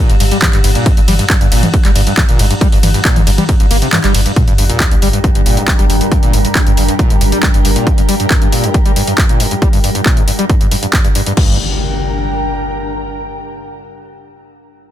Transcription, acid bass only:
0.00 0.11 A#2 medium
0.10 0.16 G2 loud
0.20 0.24 G2 medium
0.32 0.37 G3 medium
0.42 0.48 G2 loud
0.53 0.59 G2 medium
0.64 0.70 G2 medium
0.75 0.88 A#2 medium
0.86 0.92 G2 loud
0.97 1.01 G2 medium
1.08 1.14 G3 medium
1.19 1.25 G2 loud
1.30 1.36 G2 medium
1.41 1.47 G2 medium
1.52 1.64 A#2 medium
1.63 1.69 G2 loud
1.74 1.77 G2 medium
1.85 1.91 G3 medium
1.96 2.02 G2 loud
2.07 2.13 G2 medium
2.17 2.24 G2 medium
2.29 2.41 A#2 medium
2.39 2.45 G2 loud
2.51 2.54 G2 medium
2.61 2.67 G3 medium
2.72 2.78 G2 loud
2.83 2.89 G2 medium
2.94 3.00 G2 medium
3.05 3.18 A#2 medium
3.16 3.22 G2 loud
3.27 3.31 G2 medium
3.38 3.44 G3 medium
3.49 3.55 G2 loud
3.60 3.66 G2 medium
3.71 3.77 A#3 medium
3.82 3.88 C3 medium
3.93 3.99 G2 medium
4.04 4.13 G3 medium
4.15 4.21 G2 medium
4.26 4.32 G2 medium
4.36 4.43 G2 loud
4.48 4.54 G2 medium
4.58 4.64 G2 medium
4.70 4.82 A#2 medium
4.80 4.86 G2 loud
4.91 4.95 G2 medium
5.02 5.08 G3 medium
5.13 5.19 G2 loud
5.24 5.30 G2 medium
5.35 5.41 G2 medium
5.46 5.59 A#2 medium
5.57 5.63 G2 loud
5.68 5.71 G2 medium
5.79 5.85 G3 medium
5.90 5.96 G2 loud
6.01 6.07 G2 medium
6.12 6.18 G2 medium
6.23 6.35 A#2 medium
6.33 6.40 G2 loud
6.45 6.48 G2 medium
6.55 6.62 G3 medium
6.67 6.72 G2 loud
6.77 6.83 G2 medium
6.88 6.94 G2 medium
6.99 7.12 A#2 medium
7.10 7.16 G2 loud
7.21 7.25 G2 medium
7.32 7.38 G3 medium
7.43 7.49 G2 loud
7.54 7.60 G2 medium
7.65 7.71 G2 medium
7.76 7.88 A#2 medium
7.87 7.93 G2 loud
7.98 8.02 G2 medium
8.09 8.15 G3 medium
8.20 8.26 G2 loud
8.31 8.37 G2 medium
8.42 8.48 G2 medium
8.52 8.65 A#2 medium
8.64 8.70 G2 loud
8.74 8.78 G2 medium
8.86 8.91 G3 medium
8.96 9.02 G2 loud
9.07 9.13 G2 medium
9.18 9.24 G2 medium
9.29 9.42 A#2 medium
9.40 9.46 G2 loud
9.51 9.55 G2 medium
9.62 9.68 G3 medium
9.73 9.79 G2 loud
9.84 9.90 G2 medium
9.95 10.01 G2 medium
10.06 10.18 A#2 medium
10.17 10.23 G2 loud
10.28 10.31 G2 medium
10.39 10.45 G3 medium
10.50 10.56 G2 loud
10.61 10.67 G2 medium
10.71 10.75 G2 loud
10.83 10.86 G2 medium
10.93 10.99 G2 medium
11.05 11.08 G2 medium
11.15 11.21 G2 medium
11.26 11.32 G2 medium
11.37 11.57 G2 medium

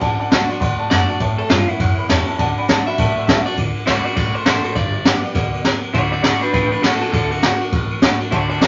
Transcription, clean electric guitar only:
0.90 1.19 D5 loud
1.38 1.50 A4 medium
1.50 1.68 F4 loud
1.68 2.26 E4 medium
2.87 3.45 E5 loud
3.46 3.57 D5 loud
3.86 4.04 F#4 medium
3.86 4.04 D5 loud
4.05 4.14 F#4 medium
4.05 4.15 D5 medium
4.16 4.34 F#4 medium
4.16 4.35 D5 medium
4.34 4.44 A4 medium
4.34 4.45 C5 medium
4.46 4.63 A4 medium
4.46 4.63 C5 medium
4.64 4.75 A4 medium
4.64 4.75 C5 medium
4.75 5.62 D5 loud
5.94 6.11 F#4 medium
5.94 6.12 D5 loud
6.12 6.22 F#4 medium
6.12 6.22 D5 loud
6.23 6.41 F#4 medium
6.23 6.42 D5 loud
6.41 6.52 D4 medium
6.41 6.52 B4 medium
6.53 6.71 D4 medium
6.53 6.71 B4 loud
6.72 6.83 D4 medium
6.72 6.83 B4 medium
6.82 7.00 F#4 medium
6.82 7.00 A4 medium
7.01 7.11 F#4 medium
7.01 7.11 A4 medium
7.12 7.30 F#4 medium
7.12 7.31 A4 medium
7.31 7.60 F#4 loud
8.31 8.48 F#4 medium
8.31 8.49 D5 medium
8.49 8.60 F#4 medium
8.49 8.60 D5 medium
8.61 8.67 F#4 medium
8.61 8.67 D5 medium

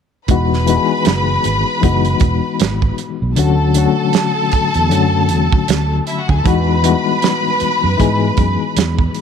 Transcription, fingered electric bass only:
0.29 0.76 E1 medium
1.06 1.36 F#1 medium
1.45 1.62 G#1 medium
1.83 2.13 F#1 medium
2.21 2.39 E1 medium
2.61 2.91 G#1 medium
3.22 3.34 B1 medium
3.37 3.85 D2 medium
4.53 muted fingered electric bass stroke soft
4.75 4.92 E2 medium
4.92 5.31 F#2 medium
5.31 5.48 E2 medium
5.69 5.99 D2 medium
6.29 6.42 D2 medium
6.46 6.93 E2 loud
7.62 muted fingered electric bass stroke soft
7.84 7.96 F#2 medium
8.00 8.30 G#2 medium
8.38 8.55 F#2 medium
8.77 9.07 E2 medium

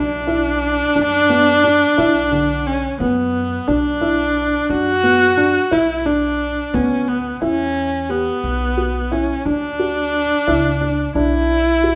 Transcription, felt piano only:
0.00 0.14 D4 medium
0.27 0.69 E4 medium
0.96 1.16 D4 medium
1.29 1.50 B3 medium
1.64 1.85 D4 medium
1.98 2.19 E4 medium
2.32 2.74 D3 medium
3.00 3.42 B3 medium
3.68 3.89 D4 medium
4.01 4.43 E4 medium
4.70 4.91 D4 medium
5.03 5.25 B3 medium
5.37 5.59 D4 medium
5.71 5.93 E4 medium
6.06 6.48 D4 medium
6.74 7.16 B3 medium
7.42 7.84 E4 medium
8.09 8.51 G4 soft
8.77 8.99 F#4 medium
9.12 9.33 E4 medium
9.46 9.67 D4 medium
9.79 10.21 F#4 medium
10.47 10.68 E4 medium
10.81 11.02 D4 medium
11.15 11.57 D4 medium
11.84 11.95 F#4 medium

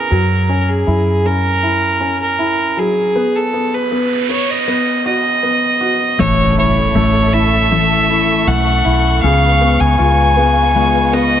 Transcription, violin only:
0.00 0.61 A#4 medium
0.61 0.70 A#4 soft
0.69 1.28 G#4 medium
1.26 2.21 A#4 medium
2.22 2.81 A#4 medium
2.79 3.38 G#4 medium
3.36 3.76 A4 medium
3.75 4.30 B4 medium
4.32 4.52 C#5 medium
4.51 5.06 D#5 medium
5.07 6.21 D#5 medium
6.20 6.58 C#5 medium
6.59 7.35 C#5 medium
7.33 8.49 E5 medium
8.47 9.23 F#5 medium
9.24 9.82 F5 loud
9.81 11.15 G#5 medium
11.14 11.40 D#5 loud

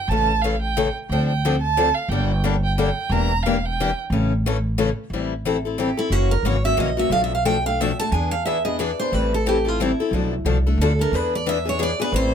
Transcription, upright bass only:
0.08 0.89 A1 medium
1.09 1.90 D2 medium
2.08 2.89 G1 loud
3.09 3.90 E1 medium
4.10 4.91 A1 medium
5.10 5.91 A1 medium
6.10 6.38 F#1 medium
6.43 6.72 G#1 medium
6.77 7.06 A#1 medium
7.10 7.91 B1 medium
8.12 8.92 E2 medium
9.12 9.92 A1 loud
10.11 10.38 B1 medium
10.45 10.74 C2 medium
10.78 11.07 D2 medium
11.12 11.92 E2 medium
12.12 12.34 A1 loud

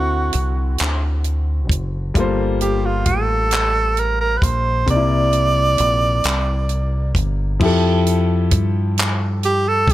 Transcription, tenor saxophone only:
0.00 0.80 F#4 medium
2.61 2.87 G4 medium
2.86 3.08 F4 medium
3.06 4.01 A4 loud
4.00 4.20 A#4 medium
4.21 4.39 A#4 medium
4.37 4.45 B4 medium
4.43 4.88 C5 medium
4.90 7.13 D5 loud
9.45 9.70 G4 loud
9.68 9.93 A4 loud

